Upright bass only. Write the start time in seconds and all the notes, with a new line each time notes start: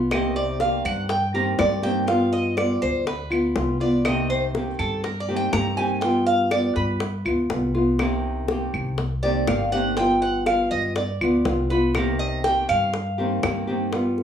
Already playing: C2
0.85 G2
1.59 G2
2.83 D2
3.56 C2
4.79 G2
5.53 G2
6.76 G2
7.25 D2
7.50 C2
8.74 C2
9.48 G1
10.71 G2
11.21 D2
11.46 C2
12.70 G2
13.44 G2